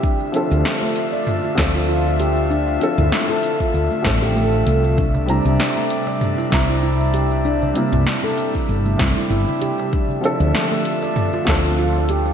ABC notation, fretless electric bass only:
X:1
M:4/4
L:1/16
Q:"Swing 16ths" 1/4=97
K:Dm
V:1 name="Fretless electric bass" clef=bass
z3 D,, z6 D,,6- | D,,2 z D,, z4 D,, z A,,,4 C,,2- | C,,3 C,, z6 C,,6- | C,,2 z C,, z4 G,,,2 C,, z G,,, z3 |
z3 D,, z6 D,,6 |]